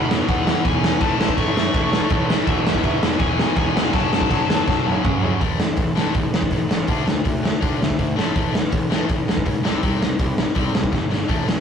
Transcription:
Already playing: E2 B2 E3
0.09 E1 E2 B2 E3, snare
0.27 E1 E2 B2 E3 F#5, kick, crash
0.46 E2 B2 E3, snare
0.63 E1 E2 B2 E3 G#5, kick, crash
0.82 E1 E2 B2 E3, snare
1.00 A1 A2 E3 A3 A5, kick, crash
1.18 A1 A2 E3 A3, snare
1.29 kick
1.37 A1 A2 E3 A3 C#6, kick, crash
1.56 F#2 A2 E3 A3, snare
1.74 A1 A2 E3 A3, kick, crash
1.91 A1 A2 E3 A3, snare
2.10 A1 A2 E3 A3, kick, crash
2.29 A2 E3 A3, snare
2.46 E1 E2 B2 E3 E5, kick, crash
2.64 E1 E2 B2 E3, snare
2.74 kick
2.84 D2 E2 B2 E3, kick, crash
3.02 E1 E2 B2 E3, snare
3.19 E1 E2 B2 E3 G#5, kick, crash
3.39 E2 B2 E3, snare
3.56 E1 E2 B2 E3 G#5, kick, crash
3.75 E1 E2 B2 E3, snare
3.93 F#1 F#2 C#3 F#3 A5, kick, crash
4.11 F#1 F#2 C#3 F#3, snare
4.21 kick
4.30 F#1 F#2 C#3 F#3, kick, crash
4.48 E2 F#2 C#3 F#3, snare
4.67 F#1 F#2 C#3 F#3, kick, snare
4.85 F#1 F#2 C#3 F#3
5.04 F#1 F#2 C#3 F#3, kick, mid tom
5.23 F#2 C#3 F#3, floor tom
5.41 A1 A2 E3 A3, kick, open hi-hat
5.58 A1 A2 E3, snare
5.77 A1 A2 E3, kick, open hi-hat
5.95 A1 A2 E3 A3, snare
6.14 A1 A2 E3, kick, open hi-hat
6.33 A1 A2 E3, snare
6.42 kick
6.51 A1 A2 E3, kick, open hi-hat
6.69 A1 A2 E3, snare
6.88 D2 D3 A3 D4, kick, open hi-hat
7.07 D2 D3 A3, snare
7.24 D2 D3 A3, kick, open hi-hat
7.43 D3 A3, snare
7.61 D2 D3 A3 D4, kick, open hi-hat
7.79 D2 D3 A3, snare
7.90 kick
7.99 D2 D3 A3, kick, open hi-hat
8.16 A1 A2 E3 A3, snare
8.35 A1 A2 E3 A3, kick, open hi-hat
8.52 A1 A2 E3, snare
8.70 A1 A2 E3, kick, open hi-hat
8.90 A1 A2 E3 A3, snare
9.09 A1 A2 E3, kick, open hi-hat
9.28 A1 A2 E3, snare
9.37 kick
9.46 C#2 A2 E3, kick, open hi-hat
9.63 C2 C3 G3 C4, snare
9.82 C2 C3 G3 C4, kick, open hi-hat
10.01 C2 C3 G3, snare
10.19 C2 C3 G3, kick, open hi-hat
10.38 C3 G3, snare
10.55 C2 C3 G3 C4, kick, open hi-hat
10.74 C2 C3 G3, snare
10.84 kick
10.92 G1 C3 G3, kick, snare
11.11 C3 G3, snare
11.28 A1 A2 E3 A3, kick, open hi-hat
11.47 A1 A2 E3, snare

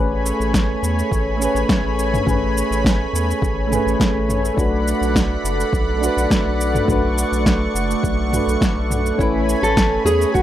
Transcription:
Already playing: A1 A3 C#4 G#4 C#5 G#5 B5
0.00 B4
0.26 shaker
0.40 A1, shaker
0.54 kick, snare, shaker
0.83 E2, shaker
0.99 shaker
1.12 A1, kick, shaker
1.37 A3 C#4
1.42 G#4 B4, shaker
1.55 A1, shaker
1.69 kick, snare, shaker
1.84 A1
1.99 shaker
2.14 mid tom, shaker
2.23 A1 A3 C#4, kick
2.28 G#4 B4, mid tom, shaker
2.58 shaker
2.71 A1, shaker
2.84 kick, snare, shaker
3.13 E2, shaker
3.31 shaker
3.42 A1, kick, shaker
3.67 A3 C#4
3.72 G#4 B4, mid tom, shaker
3.86 A1, shaker
4.00 kick, snare, shaker
4.15 A1
4.29 mid tom, shaker
4.45 shaker
4.54 B1 A3 D4 D5 F#5 B5, kick
4.59 F#4 B4, shaker
4.88 shaker
5.01 B1, shaker
5.15 kick, snare, shaker
5.44 F#1, shaker
5.60 shaker
5.73 B1, kick, shaker
5.98 A3 D4
6.03 F#4 B4, shaker
6.17 B1, shaker
6.31 kick, snare, shaker
6.45 B1
6.61 shaker
6.75 mid tom, shaker
6.85 B1 A3 D4, kick, mid tom
6.89 F#4 B4 C#6, shaker
7.18 shaker
7.32 B1, shaker
7.46 kick, snare, shaker
7.75 F#1, shaker
7.91 shaker
8.03 B1, kick, shaker
8.29 A3 D4, mid tom
8.34 F#4 B4, shaker
8.47 B1, shaker
8.61 kick, snare, shaker
8.76 B1
8.91 mid tom, shaker
9.06 shaker
9.15 A1 A3 C#4, kick
9.20 E4 B4 C#5 G#5 B5, shaker
9.49 shaker
9.62 A1 A4, shaker
9.77 kick, snare, shaker
10.05 E2 G#4, shaker
10.22 shaker
10.34 A1 F#4, kick, shaker

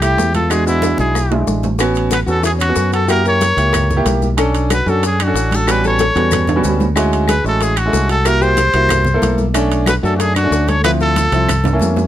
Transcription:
Already playing: C2
0.02 A3 E4 G4, high conga, high timbale, claves, maracas
0.17 E2, high bongo, low bongo, high conga, low timbale, maracas
0.34 F4 A4, high conga, high timbale, maracas
0.50 G#3 D4 E4 F#4 G#4, high bongo, high conga, high timbale, claves, maracas
0.66 G#3 B3 D4 E4 F#4, high conga, maracas
0.82 high bongo, high conga, high timbale, maracas
0.98 B1 E4 G#4, high bongo, high conga, maracas
1.15 high bongo, high conga, low timbale, claves, maracas
1.31 G#3 D4 E4, high bongo, high conga, low timbale
1.47 A1, high bongo, low bongo, high conga, maracas
1.63 high bongo, high conga, low timbale, maracas
1.79 B3 C#4 F#4, high bongo, high conga, high timbale, claves, maracas
1.95 high conga, high timbale, maracas
2.11 F#4 B4, high bongo, high conga, high timbale, claves, maracas
2.27 E2 B3 C#4 F#4 A4, high conga, maracas
2.43 E4 G#4, high bongo, high conga, high timbale, maracas
2.59 C#4 F#4, high conga, high timbale, claves, maracas
2.69 B3 C#4 F#4
2.76 F#2, high bongo, low bongo, high conga, maracas
2.92 F#4 A4, high timbale, maracas
3.08 A#3 E4 F#4 G4 A#4, high bongo, high conga, high timbale, claves, maracas
3.25 A#4 C#5, high bongo, high conga, maracas
3.41 high bongo, high conga, high timbale, maracas
3.56 C#2 A#3 E4 G4, high conga, high timbale, maracas
3.73 high bongo, high conga, low conga, high timbale, claves, maracas
3.90 high bongo, high conga, low conga, maracas
3.96 A#3 E4 G4
4.05 B1, high bongo, low bongo, high conga, high timbale, maracas
4.22 high bongo, high conga, maracas
4.37 C#4 D4 A4, high bongo, high conga, high timbale, claves, maracas
4.55 high conga, high timbale, maracas
4.70 F#4 B4, high bongo, high conga, high timbale, claves, maracas
4.86 F#2 C#4 D4 F#4 A4, high conga, maracas
5.03 D4 G#4, high bongo, high conga, high timbale, maracas
5.19 D4 F#4, high conga, high timbale, claves, maracas
5.27 C#4 D4 A4
5.34 A1, high bongo, low bongo, high conga, maracas
5.51 F#4 A4, high conga, high timbale, maracas
5.67 G3 B3 C#4 F#4 G4 B4, high bongo, high timbale, claves, maracas
5.83 A4, high bongo, high conga, maracas
5.87 C#5
5.99 high bongo, high conga, high timbale, maracas
6.15 E2 G3 B3 C#4 F#4, high bongo, high timbale, maracas
6.31 high bongo, high conga, low conga, high timbale, claves, maracas
6.47 low bongo, high conga, low conga, high timbale, maracas
6.56 G3 B3 C#4 F#4
6.63 D2, high conga, low timbale, maracas
6.80 low bongo, high conga, low timbale, maracas
6.96 G#3 C#4 E4 F#4, high bongo, high conga, high timbale, claves, maracas
7.12 high conga, high timbale, maracas
7.28 G#4 B4, high bongo, high conga, high timbale, claves, maracas
7.44 A1 G#3 C#4 E4 F#4 A4, high conga, maracas
7.60 E4 G#4, high bongo, high conga, high timbale, maracas
7.76 D4 F#4, high conga, high timbale, claves, maracas
7.86 G#3 C#4 E4 A4
7.92 C2, high bongo, low bongo, high conga, low timbale, maracas
8.09 F#4 A4, high timbale, maracas
8.25 A#3 E4 F#4 G4 A#4, high bongo, high conga, high timbale, claves, maracas
8.41 G4 C5, high bongo, high conga, maracas
8.57 high bongo, high conga, high timbale, maracas
8.73 C2 A#3 E4 F#4, high conga, high timbale, maracas
8.89 high bongo, high conga, low conga, high timbale, claves, maracas
9.05 high bongo, high conga, low conga, maracas
9.14 A#3 E4 A4
9.22 B1, high bongo, low bongo, high conga, high timbale, maracas
9.38 high bongo, high conga, maracas
9.54 A3 C#4 D4, high bongo, high timbale, claves, maracas
9.70 high conga, high timbale, maracas
9.86 F#4 B4, high bongo, high conga, high timbale, claves, maracas
10.03 F#2 A3 C#4 D4 F#4 A4, high conga, maracas
10.15 D4 F#4, high conga
10.19 D4 G#4, high bongo, high timbale, maracas
10.35 D4 F#4, high conga, high timbale, claves, maracas
10.43 A3 C#4 D4
10.51 D2, high bongo, low bongo, high conga, maracas
10.68 A4 C#5, high conga, high timbale, maracas
10.84 F3 C4 E4 F4 B4, high bongo, high conga, high timbale, claves, maracas
11.00 F4 A4, high bongo, high conga, maracas
11.16 high bongo, high conga, high timbale, maracas
11.32 C2 F3 C4 E4, high bongo, high conga, high timbale, maracas
11.49 low bongo, high conga, low conga, high timbale, claves, maracas
11.64 low bongo, high conga, low conga, high timbale, maracas
11.73 A#3 C#4 E4
11.79 F2, low bongo, high conga, low timbale, maracas
11.96 low bongo, high conga, low timbale, maracas

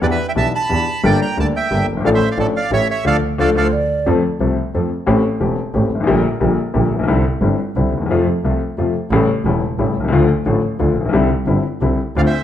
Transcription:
0.01 E2 E3 B3 D4 G4 B4 D5
0.11 B4 E5
0.29 E5 G5
0.36 B1 B2 E3 B3 D4 G4 E5 A5
0.55 A5 B5
0.69 E2 E3 B3 D4 G4
1.03 G1 G2 G3 A#3 D4 A4 D5 G5
1.22 G5 A#5
1.37 D2 D3 G3 A#3 D4 A4 D5 A5
1.56 E5 G5
1.71 G1 G2 G3 A#3 D4 A4
1.89 F#1 G1
1.97 G1 G#1
2.04 A1 A2 F3 A3 D4 A4 D5 F5
2.15 C5 E5
2.31 D5 F5
2.37 A1 A2 F3 A3 D4 A4 D5
2.56 D5 F5
2.71 A1 A2 E3 A3 C#4 G4 C#5 E5
2.91 C#5 E5
3.05 D2 D3 F3 A3 A4 D5 F5
3.38 D2 D3 F3 A3 A4 D5 F5
3.55 D2 D3 F3 A3 A4 D5 F5
3.64 C5
3.73 D5
4.06 F2 F3 A3 C4 A4
4.40 C2 C3 F3 A3 C4 A4
4.74 F2 F3 A3 C4 A4
5.06 A1 A2 E3 A3 C4 G4
5.40 E1 E2 E3 A3 C4 G4
5.74 A1 A2 E3 A3 C4 G4
5.91 G1 G#1
6.00 G#1 A1
6.06 A#1 A#2 D3 G3 A#3 G4
6.40 A#1 A#2 D3 G3 A#3 G4
6.74 A#1 A#2 D3 G3 A#3 G4
6.91 A1 A#1
6.99 A#1 B1
7.08 C2 C3 D3 G3 C4 E4
7.41 G1 G2 D3 G3 C4 E4
7.76 C2 C3 D3 G3 C4 E4
7.93 D2 D#2
8.02 D#2
8.06 E2
8.10 F2 C3 F3 A3 F4
8.44 C2 C3 F3 A3 F4
8.78 F2 C3 F3 A3 F4
9.11 A1 A2 C#3 G3 A3 E4
9.45 E1 E2 C#3 G3 A3 E4
9.79 A1 A2 C#3 G3 A3 E4
9.96 C2
10.00 B1
10.04 C2 C#2
10.12 D2 D3 F3 A3 F4
10.46 A1 A2 D3 F3 A3 F4
10.79 D2 D3 F3 A3 F4
10.96 A1 A#1
11.05 A#1
11.09 B1 C2 D3
11.13 C2 C3 G3 C4 E4
11.47 G1 G2 D3 G3 C4 E4
11.81 C2 C3 D3 G3 C4 E4
12.16 D2 D3 A3 C4 F4 D5 F5
12.26 C5 E5

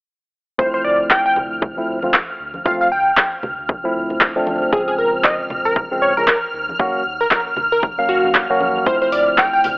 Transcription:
0.58 F3 A3 C4 E4 C5 F6, kick
0.74 C5
0.84 D2 D5
1.11 G5, kick, clap
1.26 G5
1.36 D2, low conga
1.52 D2
1.62 kick, low conga
1.77 F3 A3 C4 E4
1.88 D2
2.03 D2 F3 A3 C4 F4, high conga
2.14 kick, clap
2.40 D2
2.54 high conga
2.65 F3 A3 C4 F4 F5, kick
2.81 F5
2.92 D2 G5
3.17 kick, clap
3.43 D2, low conga
3.59 D2
3.69 kick, low conga
3.84 F3 A3 C4 E4
3.95 D2
4.10 D2, high conga
4.21 kick, clap
4.36 F3 A3 C4 D4
4.47 D2, high conga
4.62 high conga
4.72 C#3 F3 G#3 C4 G#4, kick
4.88 G#4
4.98 A#1 A#4
5.24 D#5, kick, clap
5.50 A#1, low conga
5.65 A#1 A#4
5.76 kick, low conga
5.91 C#3 F3 G#3 C4
6.02 A#1 C#5
6.17 A#1 C#3 F3 G#3 C#4 A#4, high conga
6.28 A#4, kick, clap
6.54 D#2
6.69 high conga
6.79 F#3 A#3 C#4 F#4, kick
7.05 D#2
7.21 A#4
7.31 A#4, kick, clap
7.57 D#2, low conga
7.72 D#2 A#4
7.83 kick, low conga
7.98 F#3 A#3 C#4 F5
8.09 D#2 F#4
8.24 D#2, high conga
8.35 kick, clap
8.50 F#3 A#3 C#4 F#4
8.60 D#2, high conga
8.76 high conga
8.86 F3 A3 C4 E4 C5, kick
9.02 C5
9.12 D2 D5, open hi-hat
9.38 G5, kick, clap
9.53 G5
9.64 D2, open hi-hat, low conga

